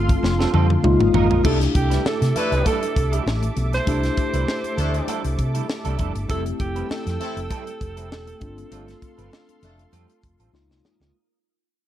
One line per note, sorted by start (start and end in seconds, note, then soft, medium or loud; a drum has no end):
0.00 0.15 G1 loud
0.00 0.79 A3 medium
0.00 0.83 C4 medium
0.00 0.80 D4 medium
0.00 0.80 F4 medium
0.00 0.84 F4 loud
0.00 0.80 A4 medium
0.00 0.82 F5 medium
0.00 0.82 C6 medium
0.09 muted clean electric guitar stroke soft
0.09 kick medium
0.09 closed hi-hat medium
0.09 low conga medium
0.23 0.44 F1 loud
0.23 muted clean electric guitar stroke soft
0.23 snare medium
0.23 high conga medium
0.39 0.52 G3 medium
0.39 0.52 C4 medium
0.39 0.52 F4 medium
0.39 0.52 A4 medium
0.39 snare medium
0.39 muted conga soft
0.53 0.75 F2 loud
0.53 0.72 G3 medium
0.53 0.69 C4 medium
0.53 0.69 F4 medium
0.53 0.68 A4 loud
0.53 high tom medium
0.69 muted clean electric guitar stroke soft
0.69 high tom medium
0.83 0.95 C#2 loud
0.83 1.44 G#3 medium
0.83 1.44 A#3 medium
0.83 1.45 D#4 medium
0.83 1.45 F4 loud
0.83 1.44 A#4 medium
0.83 1.44 F5 medium
0.83 1.44 D#6 medium
0.83 muted clean electric guitar stroke soft
0.83 mid tom medium
0.83 muted conga soft
1.00 1.10 G1 medium
1.00 muted clean electric guitar stroke medium
1.00 mid tom medium
1.00 high conga medium
1.14 1.30 G#1 loud
1.14 1.30 G#3 medium
1.14 1.30 D#4 medium
1.14 1.29 F4 medium
1.14 1.29 A#4 loud
1.14 floor tom loud
1.14 low conga medium
1.30 1.40 A#1 medium
1.30 1.43 G#3 soft
1.30 1.43 D#4 medium
1.30 1.43 F4 medium
1.30 1.43 A#4 medium
1.30 floor tom loud
1.43 1.66 C2 loud
1.43 1.63 G3 medium
1.43 3.82 A3 medium
1.43 1.59 A3 medium
1.43 3.83 D4 medium
1.43 1.60 D4 medium
1.43 1.59 D4 medium
1.43 1.60 E4 medium
1.43 1.59 E4 medium
1.43 3.83 E4 medium
1.43 3.84 G4 medium
1.43 8.38 A4 medium
1.43 1.59 A4 medium
1.43 6.26 E5 medium
1.43 6.25 D6 medium
1.43 kick loud
1.43 crash loud
1.60 muted clean electric guitar stroke soft
1.60 snare soft
1.60 closed hi-hat medium
1.74 1.96 C2 loud
1.74 2.04 G4 medium
1.74 muted clean electric guitar stroke soft
1.74 kick medium
1.74 closed hi-hat medium
1.90 2.03 G3 medium
1.90 2.04 D4 medium
1.90 2.04 E4 medium
1.90 2.03 B4 medium
1.90 snare soft
1.90 closed hi-hat medium
2.04 2.39 A4 medium
2.04 muted clean electric guitar stroke soft
2.04 muted fingered electric bass stroke medium
2.04 snare loud
2.04 muted conga soft
2.21 2.31 C3 loud
2.21 muted clean electric guitar stroke soft
2.21 snare soft
2.21 closed hi-hat medium
2.21 high conga medium
2.36 2.75 A3 loud
2.36 2.75 D4 loud
2.36 2.75 E4 loud
2.36 2.75 A4 loud
2.36 2.67 B4 loud
2.36 closed hi-hat medium
2.36 low conga medium
2.51 2.62 C2 loud
2.51 muted clean electric guitar stroke soft
2.51 closed hi-hat soft
2.65 2.84 G3 medium
2.65 2.82 D4 medium
2.65 2.81 E4 medium
2.65 2.81 A4 loud
2.65 3.40 A4 medium
2.65 kick medium
2.65 closed hi-hat loud
2.65 muted conga soft
2.65 high conga medium
2.82 muted clean electric guitar stroke soft
2.82 closed hi-hat medium
2.82 muted conga soft
2.96 3.18 C2 loud
2.96 muted clean electric guitar stroke soft
2.96 kick medium
2.96 closed hi-hat medium
3.12 3.25 G3 medium
3.12 3.25 D4 medium
3.12 3.25 E4 medium
3.12 3.25 A4 medium
3.12 closed hi-hat medium
3.26 3.48 A1 loud
3.26 snare loud
3.26 muted conga soft
3.42 muted clean electric guitar stroke medium
3.42 closed hi-hat soft
3.42 high conga medium
3.56 3.78 B1 medium
3.56 closed hi-hat medium
3.56 low conga medium
3.73 5.52 C5 loud
3.73 muted clean electric guitar stroke soft
3.73 snare soft
3.73 closed hi-hat soft
3.73 high conga soft
3.86 4.08 C2 loud
3.86 4.06 G3 medium
3.86 6.25 A3 medium
3.86 4.01 A3 medium
3.86 6.25 D4 medium
3.86 4.01 D4 medium
3.86 4.03 D4 medium
3.86 4.01 E4 medium
3.86 6.26 E4 medium
3.86 4.02 E4 medium
3.86 6.26 G4 medium
3.86 4.01 A4 medium
3.86 4.02 A4 medium
3.86 kick loud
3.86 closed hi-hat loud
4.03 muted clean electric guitar stroke soft
4.03 snare soft
4.03 closed hi-hat medium
4.03 muted conga soft
4.17 muted clean electric guitar stroke soft
4.17 kick loud
4.17 closed hi-hat medium
4.33 4.44 C2 loud
4.33 4.46 G3 medium
4.33 4.46 D4 medium
4.33 4.46 E4 medium
4.33 4.46 B4 medium
4.33 closed hi-hat medium
4.48 snare loud
4.64 muted clean electric guitar stroke soft
4.64 closed hi-hat medium
4.64 high conga medium
4.78 4.99 D2 loud
4.78 5.17 A3 loud
4.78 5.18 D4 loud
4.78 5.18 E4 loud
4.78 5.17 A4 loud
4.78 closed hi-hat medium
4.78 low conga medium
4.94 muted clean electric guitar stroke soft
4.94 closed hi-hat soft
5.07 5.26 G3 medium
5.07 5.24 D4 medium
5.07 5.23 E4 medium
5.07 5.23 A4 loud
5.07 closed hi-hat loud
5.07 high conga medium
5.24 5.34 C2 loud
5.24 muted clean electric guitar stroke soft
5.24 closed hi-hat medium
5.38 5.60 C3 loud
5.38 muted clean electric guitar stroke soft
5.38 kick medium
5.38 closed hi-hat medium
5.54 5.67 G3 medium
5.54 5.68 D4 medium
5.54 5.67 E4 medium
5.54 5.67 A4 medium
5.54 closed hi-hat medium
5.69 muted clean electric guitar stroke soft
5.69 snare loud
5.85 5.95 C2 medium
5.85 5.97 G3 medium
5.85 5.98 D4 medium
5.85 5.98 E4 medium
5.85 5.99 A4 medium
5.85 closed hi-hat soft
5.85 muted conga soft
5.85 high conga medium
5.98 6.11 F1 medium
5.98 6.14 G3 medium
5.98 6.14 D4 medium
5.98 6.14 E4 medium
5.98 6.14 A4 medium
5.98 kick medium
5.98 closed hi-hat medium
5.98 low conga medium
6.15 6.25 G1 medium
6.15 muted clean electric guitar stroke medium
6.15 closed hi-hat medium
6.15 high conga soft
6.28 6.51 F1 loud
6.28 6.48 G3 medium
6.28 8.37 A3 medium
6.28 6.43 A3 medium
6.28 8.37 C4 medium
6.28 6.45 C4 medium
6.28 6.43 C4 medium
6.28 6.43 E4 medium
6.28 8.38 E4 medium
6.28 6.45 E4 medium
6.28 8.38 G4 medium
6.28 6.43 A4 medium
6.28 6.44 A4 medium
6.28 6.44 A4 loud
6.28 8.40 G5 medium
6.28 8.40 E6 medium
6.28 kick loud
6.28 closed hi-hat loud
6.45 muted clean electric guitar stroke medium
6.45 closed hi-hat medium
6.59 6.81 F1 medium
6.59 6.88 G4 loud
6.59 muted clean electric guitar stroke soft
6.59 kick medium
6.59 closed hi-hat medium
6.76 6.88 G3 medium
6.76 6.89 C4 medium
6.76 6.89 E4 medium
6.76 6.89 B4 medium
6.76 closed hi-hat medium
6.89 10.50 A4 medium
6.89 muted clean electric guitar stroke soft
6.89 muted fingered electric bass stroke medium
6.89 snare loud
6.89 muted conga soft
7.06 7.16 F2 medium
7.06 muted clean electric guitar stroke soft
7.06 snare soft
7.06 closed hi-hat medium
7.06 high conga soft
7.20 7.40 A3 loud
7.20 7.40 C4 loud
7.20 7.40 E4 loud
7.20 7.40 A4 loud
7.20 closed hi-hat medium
7.20 low conga medium
7.36 7.46 F1 loud
7.36 muted clean electric guitar stroke soft
7.36 closed hi-hat medium
7.50 7.69 G3 medium
7.50 7.66 C4 medium
7.50 7.66 E4 medium
7.50 7.65 A4 medium
7.50 kick medium
7.50 closed hi-hat loud
7.50 high conga medium
7.66 muted clean electric guitar stroke medium
7.66 closed hi-hat soft
7.66 muted conga soft
7.80 8.11 F1 medium
7.80 muted clean electric guitar stroke soft
7.80 kick medium
7.80 closed hi-hat medium
7.96 8.09 G3 medium
7.96 8.10 C4 medium
7.96 8.10 E4 medium
7.96 8.10 A4 medium
7.96 closed hi-hat medium
8.11 8.32 E1 loud
8.11 snare loud
8.27 muted clean electric guitar stroke medium
8.27 closed hi-hat medium
8.27 high conga medium
8.40 8.63 G1 loud
8.40 10.49 A3 medium
8.40 10.49 C4 medium
8.40 10.50 D4 medium
8.40 10.50 F4 medium
8.40 10.52 A4 medium
8.40 11.12 F5 medium
8.40 10.52 C6 medium
8.40 kick loud
8.40 closed hi-hat medium
8.40 low conga medium
8.57 muted clean electric guitar stroke soft
8.57 closed hi-hat medium
8.57 high conga soft
8.71 8.93 G1 loud
8.71 8.90 G3 medium
8.71 8.86 A3 medium
8.71 8.87 C4 medium
8.71 8.86 D4 medium
8.71 8.86 F4 medium
8.71 8.87 F4 medium
8.71 8.86 A4 medium
8.71 closed hi-hat loud
8.71 muted conga soft
8.88 muted clean electric guitar stroke soft
8.88 snare soft
8.88 closed hi-hat medium
8.88 muted conga soft
9.01 muted clean electric guitar stroke soft
9.01 kick medium
9.01 closed hi-hat medium
9.18 9.28 G1 loud
9.18 9.31 G3 soft
9.18 9.31 C4 medium
9.18 9.31 F4 medium
9.18 9.31 B4 medium
9.18 closed hi-hat medium
9.32 snare loud
9.32 muted conga soft
9.48 muted clean electric guitar stroke soft
9.48 closed hi-hat medium
9.48 high conga soft
9.63 9.84 F1 loud
9.63 9.82 A3 loud
9.63 9.82 D4 medium
9.63 9.82 F4 loud
9.63 9.82 A4 loud
9.63 closed hi-hat medium
9.63 low conga medium
9.78 muted clean electric guitar stroke medium
9.78 closed hi-hat soft
9.78 low conga medium
9.92 10.04 F2 medium
9.92 10.11 G3 medium
9.92 10.09 C4 medium
9.92 10.08 F4 medium
9.92 10.08 A4 medium
9.92 closed hi-hat loud
9.92 muted conga soft
9.92 high conga medium
10.09 muted clean electric guitar stroke soft
10.09 closed hi-hat medium
10.23 10.35 F1 medium
10.23 muted clean electric guitar stroke soft
10.23 kick medium
10.23 closed hi-hat medium
10.39 10.49 A1 medium
10.39 10.53 G3 medium
10.39 10.53 C4 medium
10.39 10.53 F4 medium
10.39 10.52 A4 medium
10.39 closed hi-hat medium
10.53 10.70 C#2 loud
10.53 11.14 G#3 medium
10.53 11.14 A#3 medium
10.53 11.14 D#4 medium
10.53 11.14 F4 medium
10.53 11.14 A#4 medium
10.53 11.14 D#6 medium
10.53 muted clean electric guitar stroke soft
10.53 snare medium
10.53 muted conga soft
10.69 10.80 C2 medium
10.69 muted clean electric guitar stroke soft
10.69 snare medium
10.69 high conga medium
10.84 snare medium
10.84 low conga medium
11.00 11.10 C#2 medium
11.00 muted clean electric guitar stroke soft
11.00 snare medium